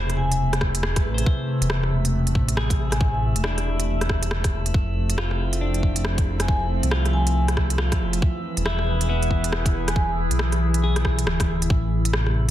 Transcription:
0.00 1.06 E1 loud
0.00 4.70 C3 medium
0.00 8.18 A3 medium
0.00 0.35 E4 medium
0.00 11.71 E4 medium
0.00 0.78 C5 medium
0.00 11.71 E5 medium
0.10 cross-stick soft
0.10 closed hi-hat soft
0.17 0.52 G#5 medium
0.32 closed hi-hat medium
0.53 cross-stick medium
0.53 closed hi-hat soft
0.61 kick medium
0.61 cross-stick medium
0.75 closed hi-hat medium
0.83 1.65 G#4 medium
0.83 cross-stick loud
0.96 kick loud
0.96 cross-stick medium
0.96 closed hi-hat soft
1.01 1.25 A1 medium
1.01 1.80 B4 medium
1.14 1.25 C5 medium
1.14 closed hi-hat medium
1.26 2.08 C5 medium
1.26 kick loud
1.61 2.34 E1 loud
1.61 closed hi-hat medium
1.70 cross-stick loud
1.83 cross-stick soft
2.05 closed hi-hat medium
2.27 closed hi-hat soft
2.35 3.34 A1 loud
2.35 kick medium
2.48 closed hi-hat medium
2.57 3.39 G#4 medium
2.57 cross-stick loud
2.70 kick loud
2.70 closed hi-hat soft
2.91 2.97 G#5 medium
2.91 cross-stick medium
2.91 closed hi-hat medium
3.01 kick loud
3.35 4.08 E1 loud
3.35 closed hi-hat medium
3.44 4.26 D4 medium
3.44 4.26 E4 medium
3.44 cross-stick loud
3.58 cross-stick soft
3.58 closed hi-hat soft
3.80 closed hi-hat medium
4.01 cross-stick medium
4.01 closed hi-hat soft
4.09 4.73 E1 medium
4.09 kick medium
4.09 cross-stick medium
4.23 closed hi-hat medium
4.31 cross-stick loud
4.44 kick loud
4.44 cross-stick medium
4.44 closed hi-hat soft
4.66 closed hi-hat medium
4.74 5.60 F1 loud
4.74 8.19 F3 medium
4.74 8.19 C4 medium
4.74 kick loud
5.10 closed hi-hat medium
5.18 6.00 F4 medium
5.18 cross-stick loud
5.31 cross-stick soft
5.53 closed hi-hat soft
5.61 6.81 F1 loud
5.61 6.43 D4 medium
5.74 closed hi-hat soft
5.83 kick medium
5.96 closed hi-hat medium
6.05 cross-stick loud
6.18 kick loud
6.18 closed hi-hat soft
6.39 6.45 G#5 medium
6.39 cross-stick medium
6.39 closed hi-hat medium
6.48 6.56 G#5 medium
6.48 kick loud
6.83 8.02 C2 loud
6.83 closed hi-hat medium
6.91 7.74 F4 medium
6.91 cross-stick loud
7.06 cross-stick soft
7.06 closed hi-hat soft
7.13 7.48 G#5 medium
7.27 closed hi-hat soft
7.48 cross-stick medium
7.48 closed hi-hat soft
7.57 kick medium
7.57 cross-stick medium
7.70 closed hi-hat medium
7.78 8.40 F4 medium
7.78 cross-stick loud
7.92 kick loud
7.92 cross-stick medium
7.92 closed hi-hat soft
8.00 8.21 F1 medium
8.13 closed hi-hat medium
8.22 11.67 E3 medium
8.22 11.66 E4 medium
8.22 11.66 G#4 medium
8.22 11.66 B4 loud
8.22 kick loud
8.57 9.30 E1 loud
8.57 closed hi-hat medium
8.66 9.08 E4 medium
8.66 cross-stick loud
8.79 cross-stick soft
9.01 closed hi-hat medium
9.09 9.91 B3 medium
9.09 9.91 E4 medium
9.23 closed hi-hat soft
9.31 10.29 E1 loud
9.31 kick medium
9.44 closed hi-hat medium
9.53 cross-stick loud
9.66 kick loud
9.66 closed hi-hat soft
9.88 9.93 G#5 medium
9.88 cross-stick medium
9.88 closed hi-hat medium
9.96 10.04 G#5 medium
9.96 kick loud
10.30 11.25 B1 loud
10.30 closed hi-hat medium
10.39 cross-stick loud
10.52 cross-stick soft
10.52 closed hi-hat soft
10.74 closed hi-hat medium
10.84 11.65 G#4 medium
10.96 cross-stick medium
10.96 closed hi-hat soft
11.05 kick medium
11.05 cross-stick medium
11.19 closed hi-hat medium
11.26 11.69 D1 loud
11.26 cross-stick loud
11.40 kick loud
11.40 cross-stick medium
11.40 closed hi-hat soft
11.62 closed hi-hat medium
11.69 12.51 A1 loud
11.69 12.51 C3 medium
11.69 12.51 A3 medium
11.69 12.51 B3 medium
11.69 12.51 B5 medium
11.69 kick loud
12.05 closed hi-hat medium
12.13 cross-stick loud
12.27 cross-stick soft

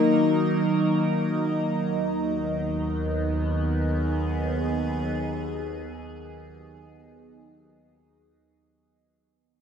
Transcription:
0.00 9.11 D#3 medium
0.00 9.01 F#3 medium
0.00 1.75 A#3 medium
0.00 9.03 D#4 medium
0.00 9.10 D#4 medium
0.00 4.15 A#4 medium
0.00 9.02 D#5 medium
1.78 9.03 D#2 medium
2.11 9.03 B3 medium
3.14 9.04 G#4 medium

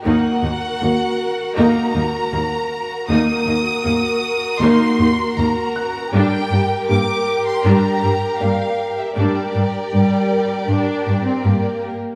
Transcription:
0.04 0.13 D#2 medium
0.04 0.40 A#3 medium
0.04 0.40 D#4 soft
0.04 3.05 F#4 medium
0.04 3.05 A#4 medium
0.04 1.53 F#5 medium
0.42 0.51 D#2 soft
0.42 0.50 A#3 soft
0.42 0.50 D#4 soft
0.80 0.90 D#2 soft
0.80 0.89 A#3 soft
0.80 3.06 F#4 soft
1.56 1.65 D#2 medium
1.56 1.92 A#3 medium
1.56 1.92 D#4 medium
1.56 3.82 F5 soft
1.56 3.06 A#5 medium
1.93 2.03 D#2 soft
1.93 2.01 A#3 soft
1.93 2.01 D#4 soft
2.32 2.41 D#2 soft
2.32 2.40 A#3 soft
3.08 3.17 D#2 medium
3.08 3.44 A#3 medium
3.08 3.44 D#4 medium
3.08 6.09 F#4 medium
3.08 6.09 A#4 medium
3.08 4.57 D#6 medium
3.46 3.54 D#2 soft
3.46 3.54 A#3 soft
3.46 3.54 D#4 soft
3.84 3.94 D#2 soft
3.84 3.92 A#3 medium
4.59 4.69 D#2 medium
4.59 4.96 A#3 medium
4.59 4.96 D#4 medium
4.59 5.36 C6 medium
4.99 5.08 D#2 soft
4.99 5.07 A#3 soft
4.99 5.07 D#4 soft
5.37 5.45 D#2 soft
5.37 5.46 A#3 medium
5.37 6.13 A#5 medium
5.76 7.99 F#6 medium
6.12 6.22 G2 medium
6.12 6.48 G3 medium
6.12 6.48 D4 medium
6.12 9.13 G4 medium
6.12 9.13 A#4 medium
6.12 6.89 G5 medium
6.51 6.59 G2 soft
6.51 6.59 G3 soft
6.51 6.59 D4 soft
6.87 6.97 G2 soft
6.87 6.97 G3 soft
6.87 6.97 A#3 medium
6.87 7.44 D6 medium
7.46 7.64 C6 medium
7.65 7.73 G2 medium
7.65 8.00 G3 medium
7.65 8.00 D4 medium
7.65 8.41 A#5 medium
8.02 8.11 G2 soft
8.02 8.11 G3 soft
8.02 8.10 D4 soft
8.40 8.50 G2 soft
8.40 8.49 G3 soft
8.40 8.49 A#3 soft
8.40 10.65 D5 soft
8.40 8.98 F5 medium
8.98 9.17 E5 soft
9.16 9.25 G2 soft
9.16 9.52 G3 soft
9.16 9.52 D4 soft
9.16 11.97 G4 soft
9.16 11.97 A#4 soft
9.16 11.78 D5 medium
9.54 9.63 G2 soft
9.54 9.62 G3 soft
9.54 9.62 D4 soft
9.92 10.00 G2 soft
9.92 10.64 G3 soft
10.32 12.15 A#4 soft
10.68 10.76 G2 soft
10.68 11.24 D4 medium
11.07 11.15 G2 soft
11.25 11.44 C4 soft
11.43 11.53 G2 soft
11.43 12.15 A#3 soft

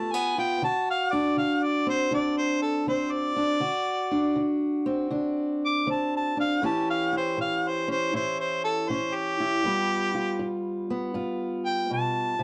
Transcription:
0.00 0.58 G2 medium
0.00 0.14 A3 medium
0.00 0.37 F4 medium
0.00 0.60 G4 medium
0.00 0.14 A5 medium
0.13 0.63 B3 medium
0.13 0.37 G#5 medium
0.38 0.60 F4 medium
0.38 0.63 G5 medium
0.62 1.32 D3 medium
0.62 3.59 F#4 medium
0.62 0.88 A5 loud
0.91 1.14 F5 loud
1.13 2.11 D4 medium
1.13 1.37 D5 medium
1.37 2.07 D3 medium
1.37 1.65 F5 medium
1.64 1.88 D5 medium
1.87 2.87 C4 medium
1.87 2.13 C5 loud
2.11 2.82 D3 medium
2.11 3.35 D4 medium
2.11 2.37 D5 medium
2.38 2.61 C5 medium
2.62 2.87 A4 medium
2.87 3.57 D3 medium
2.87 3.60 C4 medium
2.87 3.14 C5 medium
3.12 4.58 D5 loud
3.36 3.59 D4 medium
3.60 4.31 D3 medium
3.60 6.62 F#4 medium
4.11 5.10 D4 medium
4.36 5.07 D3 medium
4.86 5.86 C4 medium
5.10 5.82 D3 medium
5.10 6.36 D4 medium
5.66 5.88 D6 loud
5.87 6.57 D3 medium
5.87 6.59 C4 medium
5.87 6.13 A5 medium
6.16 6.39 A5 medium
6.37 6.59 D4 medium
6.37 6.63 F5 loud
6.62 7.32 A2 medium
6.62 9.64 E3 medium
6.62 7.87 C#4 medium
6.62 7.12 E4 medium
6.62 9.61 G4 medium
6.62 6.88 A5 medium
6.90 7.13 F5 medium
7.13 8.12 E4 medium
7.17 7.39 C5 medium
7.37 8.08 A2 medium
7.41 7.69 F5 medium
7.68 7.90 C5 medium
7.88 8.88 C#4 medium
7.88 8.14 C5 loud
8.13 8.83 A2 medium
8.13 9.39 E4 medium
8.13 8.39 C5 medium
8.40 8.63 C5 medium
8.64 8.91 A4 medium
8.89 9.59 A2 medium
8.89 9.62 C#4 medium
8.89 9.17 C5 medium
9.15 10.61 G4 loud
9.40 9.62 E4 medium
9.64 10.34 G2 medium
9.64 12.43 G3 medium
9.64 10.89 B3 medium
9.64 10.13 F4 medium
10.15 11.14 F4 medium
10.39 11.09 G2 medium
10.90 12.43 B3 medium
11.14 11.85 G2 medium
11.14 12.43 F4 medium
11.66 11.90 G5 loud
11.90 12.39 B2 medium
11.90 12.43 A5 medium
12.39 12.43 C3 medium

